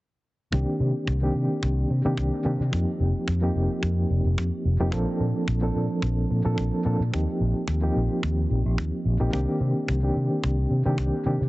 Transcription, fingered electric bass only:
0.52 0.63 C2 medium
0.80 0.91 C3 medium
1.07 1.28 C2 medium
1.35 1.46 C3 medium
1.63 1.84 C2 medium
1.90 2.01 C3 medium
2.05 2.14 C3 medium
2.17 2.28 C2 medium
2.45 2.56 C3 medium
2.60 2.69 C3 medium
2.73 2.84 F2 medium
3.00 3.11 F1 medium
3.15 muted fingered electric bass stroke soft
3.28 3.49 F2 medium
3.55 3.66 F1 medium
3.83 4.04 F2 medium
4.10 4.21 F1 medium
4.25 4.34 F1 medium
4.38 4.49 F2 medium
4.65 4.76 F1 medium
4.80 4.89 F1 medium
4.92 5.03 A#1 medium
5.20 5.31 A#2 medium
5.48 5.69 A#1 medium
5.75 5.86 A#2 medium
6.02 6.24 A#1 medium
6.30 6.41 A#2 medium
6.45 6.54 A#2 medium
6.58 6.69 A#1 medium
6.85 6.96 A#2 medium
7.00 7.09 A#2 medium
7.14 7.24 D#2 medium
7.40 7.51 A#1 medium
7.55 muted fingered electric bass stroke soft
7.67 7.89 D#2 medium
7.96 8.07 A#1 medium
8.23 8.44 D#2 medium
8.50 8.62 A#1 medium
8.66 8.75 A#1 medium
8.78 8.89 D#2 medium
9.05 9.16 A#1 medium
9.20 9.30 A#1 medium
9.33 9.44 C2 medium
9.60 9.71 C3 medium
9.88 10.09 C2 medium
10.15 10.27 C3 medium
10.44 10.64 C2 medium
10.70 10.82 C3 medium
10.85 10.95 C3 medium
10.98 11.09 C2 medium
11.26 11.37 C3 medium
11.41 11.49 C3 medium

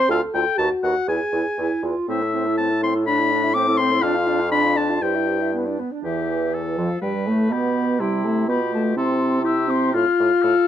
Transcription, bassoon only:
0.09 0.20 D2 medium
0.34 0.45 D2 medium
0.58 0.69 D#2 medium
0.83 0.94 D#2 medium
1.07 1.19 E2 medium
1.32 1.44 E2 medium
1.58 1.69 E2 medium
1.82 1.94 E2 medium
2.08 3.99 A2 medium
4.03 5.00 F2 medium
5.01 5.77 G2 medium
6.04 6.74 E2 medium
6.78 6.89 F2 soft
7.02 7.28 G2 medium
7.26 7.50 A2 medium
7.50 7.98 B2 medium
8.00 8.45 C3 medium
8.48 8.95 B2 medium
8.97 9.92 C3 medium
9.94 10.05 A2 medium
10.19 10.30 A2 medium
10.43 10.54 A2 medium

